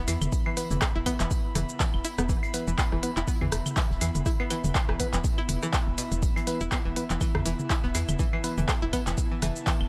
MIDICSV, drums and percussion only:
0, 0, Header, 1, 2, 480
1, 0, Start_track
1, 0, Tempo, 491803
1, 316, Time_signature, 4, 2, 24, 8
1, 9648, End_track
2, 0, Start_track
2, 0, Title_t, "Drums"
2, 75, Note_on_c, 9, 75, 57
2, 76, Note_on_c, 9, 38, 52
2, 76, Note_on_c, 9, 46, 95
2, 76, Note_on_c, 9, 82, 57
2, 81, Note_on_c, 9, 54, 72
2, 173, Note_off_c, 9, 38, 0
2, 173, Note_off_c, 9, 75, 0
2, 174, Note_off_c, 9, 46, 0
2, 174, Note_off_c, 9, 82, 0
2, 179, Note_off_c, 9, 54, 0
2, 210, Note_on_c, 9, 47, 94
2, 210, Note_on_c, 9, 75, 65
2, 211, Note_on_c, 9, 46, 37
2, 211, Note_on_c, 9, 82, 43
2, 308, Note_off_c, 9, 47, 0
2, 308, Note_off_c, 9, 75, 0
2, 309, Note_off_c, 9, 46, 0
2, 309, Note_off_c, 9, 82, 0
2, 315, Note_on_c, 9, 54, 83
2, 316, Note_on_c, 9, 82, 53
2, 317, Note_on_c, 9, 36, 120
2, 413, Note_off_c, 9, 54, 0
2, 414, Note_off_c, 9, 36, 0
2, 414, Note_off_c, 9, 82, 0
2, 451, Note_on_c, 9, 75, 82
2, 548, Note_off_c, 9, 75, 0
2, 556, Note_on_c, 9, 46, 93
2, 556, Note_on_c, 9, 82, 29
2, 557, Note_on_c, 9, 38, 55
2, 561, Note_on_c, 9, 54, 72
2, 654, Note_off_c, 9, 38, 0
2, 654, Note_off_c, 9, 46, 0
2, 654, Note_off_c, 9, 82, 0
2, 659, Note_off_c, 9, 54, 0
2, 690, Note_on_c, 9, 47, 96
2, 691, Note_on_c, 9, 42, 41
2, 691, Note_on_c, 9, 82, 43
2, 788, Note_off_c, 9, 47, 0
2, 788, Note_off_c, 9, 82, 0
2, 788, Note_on_c, 9, 54, 95
2, 789, Note_off_c, 9, 42, 0
2, 796, Note_on_c, 9, 37, 78
2, 796, Note_on_c, 9, 39, 94
2, 796, Note_on_c, 9, 75, 71
2, 796, Note_on_c, 9, 82, 53
2, 797, Note_on_c, 9, 36, 127
2, 800, Note_on_c, 9, 38, 121
2, 886, Note_off_c, 9, 54, 0
2, 893, Note_off_c, 9, 39, 0
2, 893, Note_off_c, 9, 82, 0
2, 894, Note_off_c, 9, 36, 0
2, 894, Note_off_c, 9, 37, 0
2, 894, Note_off_c, 9, 75, 0
2, 897, Note_off_c, 9, 38, 0
2, 1036, Note_on_c, 9, 46, 96
2, 1036, Note_on_c, 9, 54, 70
2, 1036, Note_on_c, 9, 75, 66
2, 1037, Note_on_c, 9, 36, 64
2, 1133, Note_off_c, 9, 46, 0
2, 1133, Note_off_c, 9, 54, 0
2, 1133, Note_off_c, 9, 75, 0
2, 1134, Note_off_c, 9, 36, 0
2, 1167, Note_on_c, 9, 38, 60
2, 1171, Note_on_c, 9, 39, 67
2, 1171, Note_on_c, 9, 46, 38
2, 1171, Note_on_c, 9, 82, 43
2, 1264, Note_off_c, 9, 38, 0
2, 1269, Note_off_c, 9, 39, 0
2, 1269, Note_off_c, 9, 46, 0
2, 1269, Note_off_c, 9, 82, 0
2, 1276, Note_on_c, 9, 82, 56
2, 1277, Note_on_c, 9, 36, 127
2, 1281, Note_on_c, 9, 54, 88
2, 1374, Note_off_c, 9, 36, 0
2, 1374, Note_off_c, 9, 82, 0
2, 1378, Note_off_c, 9, 54, 0
2, 1517, Note_on_c, 9, 46, 102
2, 1517, Note_on_c, 9, 82, 31
2, 1518, Note_on_c, 9, 37, 41
2, 1518, Note_on_c, 9, 47, 84
2, 1520, Note_on_c, 9, 54, 67
2, 1614, Note_off_c, 9, 46, 0
2, 1614, Note_off_c, 9, 82, 0
2, 1615, Note_off_c, 9, 37, 0
2, 1615, Note_off_c, 9, 47, 0
2, 1618, Note_off_c, 9, 54, 0
2, 1652, Note_on_c, 9, 82, 44
2, 1749, Note_off_c, 9, 82, 0
2, 1754, Note_on_c, 9, 38, 113
2, 1757, Note_on_c, 9, 36, 127
2, 1757, Note_on_c, 9, 39, 99
2, 1757, Note_on_c, 9, 82, 48
2, 1760, Note_on_c, 9, 54, 82
2, 1852, Note_off_c, 9, 38, 0
2, 1855, Note_off_c, 9, 36, 0
2, 1855, Note_off_c, 9, 39, 0
2, 1855, Note_off_c, 9, 82, 0
2, 1857, Note_off_c, 9, 54, 0
2, 1892, Note_on_c, 9, 75, 65
2, 1990, Note_off_c, 9, 75, 0
2, 1997, Note_on_c, 9, 46, 98
2, 1997, Note_on_c, 9, 82, 54
2, 2003, Note_on_c, 9, 54, 68
2, 2095, Note_off_c, 9, 46, 0
2, 2095, Note_off_c, 9, 82, 0
2, 2100, Note_off_c, 9, 54, 0
2, 2131, Note_on_c, 9, 46, 39
2, 2131, Note_on_c, 9, 82, 43
2, 2132, Note_on_c, 9, 37, 77
2, 2229, Note_off_c, 9, 37, 0
2, 2229, Note_off_c, 9, 46, 0
2, 2229, Note_off_c, 9, 82, 0
2, 2237, Note_on_c, 9, 36, 124
2, 2237, Note_on_c, 9, 82, 51
2, 2240, Note_on_c, 9, 54, 89
2, 2335, Note_off_c, 9, 36, 0
2, 2335, Note_off_c, 9, 82, 0
2, 2337, Note_off_c, 9, 54, 0
2, 2372, Note_on_c, 9, 42, 47
2, 2372, Note_on_c, 9, 75, 82
2, 2469, Note_off_c, 9, 42, 0
2, 2469, Note_off_c, 9, 75, 0
2, 2474, Note_on_c, 9, 54, 72
2, 2477, Note_on_c, 9, 38, 60
2, 2478, Note_on_c, 9, 46, 97
2, 2478, Note_on_c, 9, 82, 29
2, 2572, Note_off_c, 9, 54, 0
2, 2575, Note_off_c, 9, 38, 0
2, 2575, Note_off_c, 9, 46, 0
2, 2575, Note_off_c, 9, 82, 0
2, 2612, Note_on_c, 9, 82, 44
2, 2709, Note_off_c, 9, 82, 0
2, 2717, Note_on_c, 9, 36, 127
2, 2717, Note_on_c, 9, 39, 97
2, 2717, Note_on_c, 9, 75, 72
2, 2717, Note_on_c, 9, 82, 50
2, 2718, Note_on_c, 9, 54, 93
2, 2719, Note_on_c, 9, 38, 107
2, 2815, Note_off_c, 9, 36, 0
2, 2815, Note_off_c, 9, 39, 0
2, 2815, Note_off_c, 9, 75, 0
2, 2815, Note_off_c, 9, 82, 0
2, 2816, Note_off_c, 9, 54, 0
2, 2817, Note_off_c, 9, 38, 0
2, 2853, Note_on_c, 9, 37, 39
2, 2950, Note_off_c, 9, 37, 0
2, 2953, Note_on_c, 9, 54, 67
2, 2957, Note_on_c, 9, 46, 100
2, 3050, Note_off_c, 9, 54, 0
2, 3055, Note_off_c, 9, 46, 0
2, 3092, Note_on_c, 9, 39, 62
2, 3092, Note_on_c, 9, 46, 39
2, 3092, Note_on_c, 9, 82, 41
2, 3095, Note_on_c, 9, 38, 43
2, 3190, Note_off_c, 9, 39, 0
2, 3190, Note_off_c, 9, 46, 0
2, 3190, Note_off_c, 9, 82, 0
2, 3192, Note_off_c, 9, 38, 0
2, 3197, Note_on_c, 9, 36, 127
2, 3198, Note_on_c, 9, 82, 52
2, 3201, Note_on_c, 9, 54, 90
2, 3295, Note_off_c, 9, 36, 0
2, 3295, Note_off_c, 9, 82, 0
2, 3299, Note_off_c, 9, 54, 0
2, 3331, Note_on_c, 9, 47, 96
2, 3331, Note_on_c, 9, 75, 59
2, 3429, Note_off_c, 9, 47, 0
2, 3429, Note_off_c, 9, 75, 0
2, 3429, Note_on_c, 9, 54, 75
2, 3437, Note_on_c, 9, 37, 80
2, 3438, Note_on_c, 9, 46, 103
2, 3438, Note_on_c, 9, 82, 29
2, 3527, Note_off_c, 9, 54, 0
2, 3535, Note_off_c, 9, 37, 0
2, 3535, Note_off_c, 9, 46, 0
2, 3535, Note_off_c, 9, 82, 0
2, 3572, Note_on_c, 9, 47, 82
2, 3572, Note_on_c, 9, 75, 64
2, 3572, Note_on_c, 9, 82, 43
2, 3670, Note_off_c, 9, 47, 0
2, 3670, Note_off_c, 9, 75, 0
2, 3670, Note_off_c, 9, 82, 0
2, 3672, Note_on_c, 9, 38, 123
2, 3674, Note_on_c, 9, 54, 94
2, 3677, Note_on_c, 9, 36, 127
2, 3677, Note_on_c, 9, 39, 89
2, 3677, Note_on_c, 9, 82, 48
2, 3770, Note_off_c, 9, 38, 0
2, 3771, Note_off_c, 9, 54, 0
2, 3774, Note_off_c, 9, 36, 0
2, 3775, Note_off_c, 9, 39, 0
2, 3775, Note_off_c, 9, 82, 0
2, 3816, Note_on_c, 9, 38, 40
2, 3914, Note_off_c, 9, 38, 0
2, 3915, Note_on_c, 9, 54, 66
2, 3916, Note_on_c, 9, 46, 104
2, 3916, Note_on_c, 9, 82, 54
2, 3917, Note_on_c, 9, 75, 60
2, 3922, Note_on_c, 9, 38, 51
2, 4013, Note_off_c, 9, 54, 0
2, 4014, Note_off_c, 9, 46, 0
2, 4014, Note_off_c, 9, 82, 0
2, 4015, Note_off_c, 9, 75, 0
2, 4019, Note_off_c, 9, 38, 0
2, 4051, Note_on_c, 9, 46, 37
2, 4051, Note_on_c, 9, 82, 39
2, 4052, Note_on_c, 9, 47, 92
2, 4149, Note_off_c, 9, 46, 0
2, 4149, Note_off_c, 9, 47, 0
2, 4149, Note_off_c, 9, 82, 0
2, 4156, Note_on_c, 9, 54, 97
2, 4157, Note_on_c, 9, 36, 126
2, 4157, Note_on_c, 9, 82, 52
2, 4158, Note_on_c, 9, 37, 38
2, 4254, Note_off_c, 9, 36, 0
2, 4254, Note_off_c, 9, 54, 0
2, 4254, Note_off_c, 9, 82, 0
2, 4256, Note_off_c, 9, 37, 0
2, 4293, Note_on_c, 9, 75, 83
2, 4391, Note_off_c, 9, 75, 0
2, 4393, Note_on_c, 9, 38, 64
2, 4396, Note_on_c, 9, 46, 93
2, 4396, Note_on_c, 9, 82, 27
2, 4398, Note_on_c, 9, 75, 65
2, 4400, Note_on_c, 9, 54, 67
2, 4491, Note_off_c, 9, 38, 0
2, 4494, Note_off_c, 9, 46, 0
2, 4494, Note_off_c, 9, 82, 0
2, 4496, Note_off_c, 9, 75, 0
2, 4497, Note_off_c, 9, 54, 0
2, 4531, Note_on_c, 9, 82, 41
2, 4532, Note_on_c, 9, 47, 87
2, 4534, Note_on_c, 9, 42, 42
2, 4629, Note_off_c, 9, 82, 0
2, 4630, Note_off_c, 9, 47, 0
2, 4632, Note_off_c, 9, 42, 0
2, 4632, Note_on_c, 9, 38, 105
2, 4636, Note_on_c, 9, 36, 125
2, 4637, Note_on_c, 9, 39, 91
2, 4637, Note_on_c, 9, 82, 50
2, 4638, Note_on_c, 9, 75, 73
2, 4641, Note_on_c, 9, 54, 90
2, 4730, Note_off_c, 9, 38, 0
2, 4734, Note_off_c, 9, 36, 0
2, 4734, Note_off_c, 9, 39, 0
2, 4734, Note_off_c, 9, 82, 0
2, 4736, Note_off_c, 9, 75, 0
2, 4738, Note_off_c, 9, 54, 0
2, 4771, Note_on_c, 9, 37, 75
2, 4869, Note_off_c, 9, 37, 0
2, 4876, Note_on_c, 9, 36, 65
2, 4876, Note_on_c, 9, 46, 96
2, 4878, Note_on_c, 9, 54, 66
2, 4974, Note_off_c, 9, 36, 0
2, 4974, Note_off_c, 9, 46, 0
2, 4975, Note_off_c, 9, 54, 0
2, 5007, Note_on_c, 9, 38, 56
2, 5011, Note_on_c, 9, 39, 61
2, 5011, Note_on_c, 9, 46, 37
2, 5011, Note_on_c, 9, 82, 41
2, 5105, Note_off_c, 9, 38, 0
2, 5108, Note_off_c, 9, 39, 0
2, 5108, Note_off_c, 9, 46, 0
2, 5108, Note_off_c, 9, 82, 0
2, 5115, Note_on_c, 9, 54, 92
2, 5116, Note_on_c, 9, 36, 127
2, 5116, Note_on_c, 9, 82, 51
2, 5213, Note_off_c, 9, 54, 0
2, 5214, Note_off_c, 9, 36, 0
2, 5214, Note_off_c, 9, 82, 0
2, 5251, Note_on_c, 9, 75, 65
2, 5349, Note_off_c, 9, 75, 0
2, 5355, Note_on_c, 9, 54, 75
2, 5357, Note_on_c, 9, 46, 101
2, 5357, Note_on_c, 9, 47, 81
2, 5357, Note_on_c, 9, 82, 30
2, 5453, Note_off_c, 9, 54, 0
2, 5454, Note_off_c, 9, 46, 0
2, 5454, Note_off_c, 9, 47, 0
2, 5454, Note_off_c, 9, 82, 0
2, 5490, Note_on_c, 9, 82, 41
2, 5492, Note_on_c, 9, 37, 38
2, 5588, Note_off_c, 9, 82, 0
2, 5589, Note_off_c, 9, 37, 0
2, 5596, Note_on_c, 9, 36, 127
2, 5596, Note_on_c, 9, 39, 91
2, 5596, Note_on_c, 9, 82, 44
2, 5601, Note_on_c, 9, 38, 126
2, 5605, Note_on_c, 9, 54, 89
2, 5693, Note_off_c, 9, 39, 0
2, 5693, Note_off_c, 9, 82, 0
2, 5694, Note_off_c, 9, 36, 0
2, 5698, Note_off_c, 9, 38, 0
2, 5703, Note_off_c, 9, 54, 0
2, 5835, Note_on_c, 9, 54, 64
2, 5836, Note_on_c, 9, 46, 97
2, 5836, Note_on_c, 9, 82, 54
2, 5933, Note_off_c, 9, 54, 0
2, 5934, Note_off_c, 9, 46, 0
2, 5934, Note_off_c, 9, 82, 0
2, 5970, Note_on_c, 9, 46, 37
2, 5970, Note_on_c, 9, 82, 39
2, 6068, Note_off_c, 9, 46, 0
2, 6068, Note_off_c, 9, 82, 0
2, 6076, Note_on_c, 9, 36, 121
2, 6076, Note_on_c, 9, 82, 50
2, 6077, Note_on_c, 9, 54, 88
2, 6173, Note_off_c, 9, 82, 0
2, 6174, Note_off_c, 9, 36, 0
2, 6174, Note_off_c, 9, 54, 0
2, 6211, Note_on_c, 9, 75, 76
2, 6217, Note_on_c, 9, 42, 47
2, 6309, Note_off_c, 9, 75, 0
2, 6314, Note_on_c, 9, 38, 56
2, 6315, Note_off_c, 9, 42, 0
2, 6316, Note_on_c, 9, 46, 91
2, 6316, Note_on_c, 9, 82, 27
2, 6317, Note_on_c, 9, 54, 66
2, 6412, Note_off_c, 9, 38, 0
2, 6413, Note_off_c, 9, 46, 0
2, 6413, Note_off_c, 9, 82, 0
2, 6415, Note_off_c, 9, 54, 0
2, 6450, Note_on_c, 9, 82, 40
2, 6548, Note_off_c, 9, 82, 0
2, 6554, Note_on_c, 9, 54, 83
2, 6556, Note_on_c, 9, 36, 120
2, 6556, Note_on_c, 9, 37, 39
2, 6556, Note_on_c, 9, 38, 118
2, 6556, Note_on_c, 9, 39, 87
2, 6556, Note_on_c, 9, 75, 70
2, 6556, Note_on_c, 9, 82, 51
2, 6652, Note_off_c, 9, 54, 0
2, 6653, Note_off_c, 9, 38, 0
2, 6654, Note_off_c, 9, 36, 0
2, 6654, Note_off_c, 9, 37, 0
2, 6654, Note_off_c, 9, 39, 0
2, 6654, Note_off_c, 9, 75, 0
2, 6654, Note_off_c, 9, 82, 0
2, 6795, Note_on_c, 9, 54, 68
2, 6796, Note_on_c, 9, 46, 92
2, 6893, Note_off_c, 9, 54, 0
2, 6894, Note_off_c, 9, 46, 0
2, 6931, Note_on_c, 9, 39, 59
2, 6931, Note_on_c, 9, 46, 38
2, 6931, Note_on_c, 9, 82, 40
2, 6937, Note_on_c, 9, 38, 39
2, 7028, Note_off_c, 9, 39, 0
2, 7028, Note_off_c, 9, 46, 0
2, 7028, Note_off_c, 9, 82, 0
2, 7035, Note_off_c, 9, 38, 0
2, 7035, Note_on_c, 9, 54, 81
2, 7036, Note_on_c, 9, 36, 121
2, 7036, Note_on_c, 9, 82, 54
2, 7037, Note_on_c, 9, 75, 64
2, 7132, Note_off_c, 9, 54, 0
2, 7134, Note_off_c, 9, 36, 0
2, 7134, Note_off_c, 9, 82, 0
2, 7135, Note_off_c, 9, 75, 0
2, 7172, Note_on_c, 9, 37, 77
2, 7172, Note_on_c, 9, 47, 92
2, 7172, Note_on_c, 9, 75, 55
2, 7270, Note_off_c, 9, 37, 0
2, 7270, Note_off_c, 9, 47, 0
2, 7270, Note_off_c, 9, 75, 0
2, 7277, Note_on_c, 9, 46, 96
2, 7277, Note_on_c, 9, 82, 31
2, 7281, Note_on_c, 9, 54, 70
2, 7375, Note_off_c, 9, 46, 0
2, 7375, Note_off_c, 9, 82, 0
2, 7379, Note_off_c, 9, 54, 0
2, 7411, Note_on_c, 9, 82, 39
2, 7412, Note_on_c, 9, 47, 77
2, 7509, Note_off_c, 9, 82, 0
2, 7510, Note_off_c, 9, 47, 0
2, 7513, Note_on_c, 9, 38, 110
2, 7517, Note_on_c, 9, 36, 123
2, 7517, Note_on_c, 9, 39, 87
2, 7517, Note_on_c, 9, 82, 47
2, 7520, Note_on_c, 9, 54, 89
2, 7610, Note_off_c, 9, 38, 0
2, 7614, Note_off_c, 9, 36, 0
2, 7614, Note_off_c, 9, 39, 0
2, 7614, Note_off_c, 9, 82, 0
2, 7617, Note_off_c, 9, 54, 0
2, 7643, Note_on_c, 9, 38, 41
2, 7741, Note_off_c, 9, 38, 0
2, 7753, Note_on_c, 9, 54, 74
2, 7754, Note_on_c, 9, 38, 57
2, 7757, Note_on_c, 9, 46, 97
2, 7757, Note_on_c, 9, 82, 53
2, 7758, Note_on_c, 9, 75, 58
2, 7850, Note_off_c, 9, 54, 0
2, 7851, Note_off_c, 9, 38, 0
2, 7854, Note_off_c, 9, 46, 0
2, 7854, Note_off_c, 9, 82, 0
2, 7855, Note_off_c, 9, 75, 0
2, 7892, Note_on_c, 9, 46, 36
2, 7892, Note_on_c, 9, 82, 41
2, 7893, Note_on_c, 9, 47, 91
2, 7893, Note_on_c, 9, 75, 63
2, 7989, Note_off_c, 9, 46, 0
2, 7989, Note_off_c, 9, 82, 0
2, 7991, Note_off_c, 9, 47, 0
2, 7991, Note_off_c, 9, 75, 0
2, 7997, Note_on_c, 9, 36, 116
2, 7997, Note_on_c, 9, 82, 54
2, 8002, Note_on_c, 9, 54, 83
2, 8094, Note_off_c, 9, 36, 0
2, 8094, Note_off_c, 9, 82, 0
2, 8099, Note_off_c, 9, 54, 0
2, 8133, Note_on_c, 9, 75, 74
2, 8231, Note_off_c, 9, 75, 0
2, 8237, Note_on_c, 9, 46, 87
2, 8237, Note_on_c, 9, 82, 28
2, 8241, Note_on_c, 9, 38, 60
2, 8242, Note_on_c, 9, 54, 64
2, 8335, Note_off_c, 9, 46, 0
2, 8335, Note_off_c, 9, 82, 0
2, 8339, Note_off_c, 9, 38, 0
2, 8340, Note_off_c, 9, 54, 0
2, 8371, Note_on_c, 9, 82, 42
2, 8372, Note_on_c, 9, 42, 45
2, 8372, Note_on_c, 9, 47, 89
2, 8469, Note_off_c, 9, 47, 0
2, 8469, Note_off_c, 9, 82, 0
2, 8470, Note_off_c, 9, 42, 0
2, 8476, Note_on_c, 9, 39, 90
2, 8476, Note_on_c, 9, 82, 55
2, 8477, Note_on_c, 9, 36, 118
2, 8477, Note_on_c, 9, 37, 76
2, 8477, Note_on_c, 9, 75, 67
2, 8479, Note_on_c, 9, 54, 78
2, 8480, Note_on_c, 9, 38, 127
2, 8574, Note_off_c, 9, 36, 0
2, 8574, Note_off_c, 9, 39, 0
2, 8574, Note_off_c, 9, 82, 0
2, 8575, Note_off_c, 9, 37, 0
2, 8575, Note_off_c, 9, 75, 0
2, 8576, Note_off_c, 9, 54, 0
2, 8577, Note_off_c, 9, 38, 0
2, 8715, Note_on_c, 9, 54, 73
2, 8716, Note_on_c, 9, 36, 63
2, 8716, Note_on_c, 9, 46, 92
2, 8718, Note_on_c, 9, 75, 69
2, 8813, Note_off_c, 9, 54, 0
2, 8814, Note_off_c, 9, 36, 0
2, 8814, Note_off_c, 9, 46, 0
2, 8815, Note_off_c, 9, 75, 0
2, 8851, Note_on_c, 9, 39, 60
2, 8851, Note_on_c, 9, 46, 37
2, 8851, Note_on_c, 9, 82, 42
2, 8856, Note_on_c, 9, 38, 60
2, 8949, Note_off_c, 9, 39, 0
2, 8949, Note_off_c, 9, 46, 0
2, 8949, Note_off_c, 9, 82, 0
2, 8951, Note_on_c, 9, 54, 75
2, 8953, Note_off_c, 9, 38, 0
2, 8956, Note_on_c, 9, 36, 120
2, 8956, Note_on_c, 9, 82, 53
2, 9049, Note_off_c, 9, 54, 0
2, 9054, Note_off_c, 9, 36, 0
2, 9054, Note_off_c, 9, 82, 0
2, 9196, Note_on_c, 9, 46, 93
2, 9196, Note_on_c, 9, 54, 76
2, 9196, Note_on_c, 9, 82, 31
2, 9199, Note_on_c, 9, 37, 40
2, 9199, Note_on_c, 9, 47, 75
2, 9294, Note_off_c, 9, 46, 0
2, 9294, Note_off_c, 9, 54, 0
2, 9294, Note_off_c, 9, 82, 0
2, 9296, Note_off_c, 9, 37, 0
2, 9296, Note_off_c, 9, 47, 0
2, 9331, Note_on_c, 9, 82, 42
2, 9428, Note_off_c, 9, 82, 0
2, 9433, Note_on_c, 9, 54, 89
2, 9436, Note_on_c, 9, 36, 123
2, 9436, Note_on_c, 9, 38, 117
2, 9436, Note_on_c, 9, 39, 87
2, 9436, Note_on_c, 9, 82, 47
2, 9531, Note_off_c, 9, 54, 0
2, 9533, Note_off_c, 9, 38, 0
2, 9534, Note_off_c, 9, 36, 0
2, 9534, Note_off_c, 9, 39, 0
2, 9534, Note_off_c, 9, 82, 0
2, 9572, Note_on_c, 9, 75, 72
2, 9648, Note_off_c, 9, 75, 0
2, 9648, End_track
0, 0, End_of_file